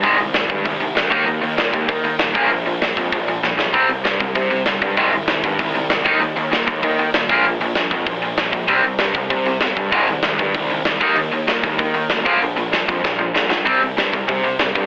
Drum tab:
HH |oooooooo|oooooooo|oooooo--|oooooooo|
SD |--o---o-|--o---o-|--o---oo|--o---o-|
BD |o--oo--o|---oo--o|---oo---|o--oo--o|

HH |oooooooo|oooooooo|oooooooo|oooooooo|
SD |--o---o-|--o---o-|--o---o-|--o---o-|
BD |o--oo--o|---oo--o|---oo--o|o--oo--o|

HH |oooooooo|oooooooo|oooo----|oooooooo|
SD |--o---o-|--o---o-|--o-o-oo|--o---o-|
BD |o--oo--o|---oo--o|---oo---|o--oo--o|